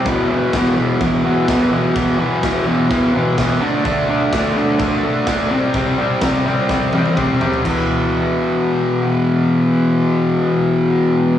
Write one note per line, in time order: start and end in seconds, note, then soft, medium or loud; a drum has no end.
0.06 0.29 E2 loud
0.06 0.29 B2 loud
0.06 0.30 E3 loud
0.06 kick loud
0.06 crash medium
0.29 0.53 E2 medium
0.29 0.53 B2 medium
0.29 0.55 E3 medium
0.53 0.76 E2 medium
0.53 0.76 B2 medium
0.53 0.77 E3 medium
0.53 kick loud
0.53 snare loud
0.53 crash medium
0.77 1.00 E2 loud
0.77 1.00 B2 loud
0.77 1.01 E3 loud
1.01 1.24 E2 medium
1.01 1.24 B2 medium
1.01 1.25 E3 loud
1.01 kick loud
1.01 crash medium
1.25 1.46 E2 medium
1.25 1.47 B2 medium
1.25 1.48 E3 loud
1.47 1.70 E2 medium
1.47 1.71 B2 loud
1.47 1.72 E3 loud
1.47 kick loud
1.47 snare loud
1.47 crash medium
1.71 1.95 E2 medium
1.71 1.95 B2 loud
1.71 1.95 E3 loud
1.96 2.17 E2 loud
1.96 2.18 B2 loud
1.96 2.19 E3 loud
1.96 kick loud
1.96 crash medium
2.18 2.41 E2 medium
2.18 2.42 B2 medium
2.18 2.43 E3 medium
2.42 2.66 E2 medium
2.42 2.66 B2 loud
2.42 2.66 E3 loud
2.42 kick loud
2.42 snare loud
2.42 crash medium
2.67 2.88 E2 loud
2.67 2.90 B2 loud
2.67 2.90 E3 loud
2.89 3.14 E2 medium
2.89 3.14 B2 loud
2.89 3.14 E3 medium
2.89 kick loud
2.89 crash medium
3.15 3.37 E2 medium
3.15 3.37 B2 medium
3.15 3.37 E3 medium
3.38 3.60 E2 loud
3.38 3.60 B2 loud
3.38 3.61 E3 loud
3.38 kick loud
3.38 snare loud
3.38 crash medium
3.61 3.83 D3 loud
3.61 3.83 A3 loud
3.61 3.84 D4 loud
3.84 4.08 D3 medium
3.84 4.09 A3 loud
3.84 4.09 D4 loud
3.84 kick loud
3.84 crash medium
4.10 4.32 D3 medium
4.10 4.32 A3 medium
4.10 4.33 D4 loud
4.32 4.55 D3 medium
4.32 4.56 A3 medium
4.32 4.57 D4 medium
4.32 kick loud
4.32 snare loud
4.32 crash medium
4.56 4.78 D3 loud
4.56 4.78 A3 loud
4.56 4.80 D4 loud
4.79 5.03 D3 medium
4.79 5.03 A3 medium
4.79 5.04 D4 loud
4.79 kick loud
4.79 crash medium
5.04 5.26 D3 medium
5.04 5.26 A3 medium
5.04 5.27 D4 medium
5.27 5.49 D3 loud
5.27 5.50 A3 loud
5.27 5.50 D4 loud
5.27 kick loud
5.27 snare loud
5.27 crash medium
5.51 5.75 C3 medium
5.51 5.76 G3 loud
5.51 5.76 C4 loud
5.74 5.98 C3 loud
5.74 5.99 G3 loud
5.74 6.00 C4 loud
5.74 kick loud
5.74 crash medium
5.99 6.21 C3 medium
5.99 6.22 G3 medium
5.99 6.23 C4 loud
6.21 6.46 C3 medium
6.21 6.47 G3 medium
6.21 6.47 C4 medium
6.21 kick loud
6.21 snare loud
6.21 crash medium
6.47 6.69 C3 medium
6.47 6.69 G3 loud
6.47 6.70 C4 loud
6.69 6.94 C3 medium
6.69 6.95 G3 medium
6.69 6.95 C4 medium
6.69 kick loud
6.69 snare medium
6.93 7.15 C3 medium
6.93 7.16 G3 medium
6.93 7.17 C4 loud
6.93 high tom medium
7.05 high tom medium
7.16 7.41 C3 loud
7.16 7.41 G3 loud
7.16 7.42 C4 loud
7.16 kick loud
7.16 mid tom loud
7.41 7.64 C3 medium
7.41 7.64 G3 loud
7.41 7.64 C4 loud
7.41 floor tom loud
7.53 floor tom medium
7.64 11.39 E2 loud
7.64 11.39 B2 loud
7.64 kick loud
7.64 crash medium
7.69 11.39 E3 loud